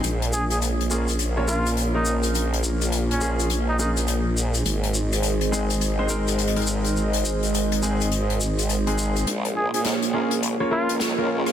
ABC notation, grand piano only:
X:1
M:4/4
L:1/16
Q:"Swing 16ths" 1/4=104
K:Bbm
V:1 name="Grand piano"
z6 [B,DFA] z2 [B,DFd] [B,DFB]2 z [B,DFB]3- | [B,DFB]6 [B,DFA]2 z2 [B,DFA] z4 z | z6 [A,CEA] z2 [A,CEc] [A,CEB]2 z [A,CEB]3- | [A,CEB]6 [A,CEA]2 z4 z [A,CEA]3 |
z6 [B,DFA] z2 [B,DFd] [B,DFB]2 z [B,DFB]3 |]